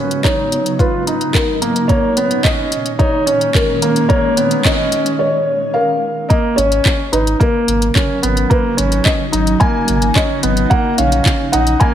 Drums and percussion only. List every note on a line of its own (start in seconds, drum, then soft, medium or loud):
0.11 closed hi-hat soft
0.24 kick loud
0.24 clap medium
0.24 closed hi-hat soft
0.52 closed hi-hat medium
0.66 closed hi-hat soft
0.79 kick loud
0.79 closed hi-hat soft
1.07 closed hi-hat medium
1.21 closed hi-hat soft
1.34 kick loud
1.34 clap medium
1.34 closed hi-hat soft
1.62 closed hi-hat medium
1.76 closed hi-hat soft
1.89 kick loud
1.89 closed hi-hat soft
2.17 closed hi-hat medium
2.31 closed hi-hat soft
2.44 kick loud
2.44 clap medium
2.44 closed hi-hat soft
2.72 closed hi-hat medium
2.86 closed hi-hat soft
2.99 kick loud
2.99 closed hi-hat soft
3.27 closed hi-hat medium
3.41 closed hi-hat soft
3.55 kick loud
3.55 clap medium
3.55 closed hi-hat soft
3.82 closed hi-hat medium
3.96 closed hi-hat soft
4.10 kick loud
4.10 closed hi-hat soft
4.37 closed hi-hat medium
4.51 closed hi-hat soft
4.65 kick loud
4.65 clap medium
4.65 closed hi-hat soft
4.92 closed hi-hat medium
5.06 closed hi-hat soft
6.30 kick loud
6.30 closed hi-hat soft
6.58 closed hi-hat medium
6.72 closed hi-hat soft
6.85 kick loud
6.85 clap medium
6.85 closed hi-hat soft
7.13 closed hi-hat medium
7.27 closed hi-hat soft
7.40 kick loud
7.40 closed hi-hat soft
7.68 closed hi-hat medium
7.82 closed hi-hat soft
7.96 kick loud
7.96 clap medium
7.96 closed hi-hat soft
8.23 closed hi-hat medium
8.37 closed hi-hat soft
8.51 kick loud
8.51 closed hi-hat soft
8.78 closed hi-hat medium
8.92 closed hi-hat soft
9.06 kick loud
9.06 clap medium
9.06 closed hi-hat soft
9.33 closed hi-hat medium
9.47 closed hi-hat soft
9.61 kick loud
9.61 closed hi-hat soft
9.88 closed hi-hat medium
10.02 closed hi-hat soft
10.16 kick loud
10.16 clap loud
10.16 closed hi-hat soft
10.43 closed hi-hat medium
10.57 closed hi-hat soft
10.71 kick loud
10.71 closed hi-hat soft
10.98 closed hi-hat medium
11.12 closed hi-hat soft
11.26 kick loud
11.26 clap loud
11.26 closed hi-hat soft
11.53 closed hi-hat medium
11.67 closed hi-hat soft
11.81 kick loud
11.81 closed hi-hat soft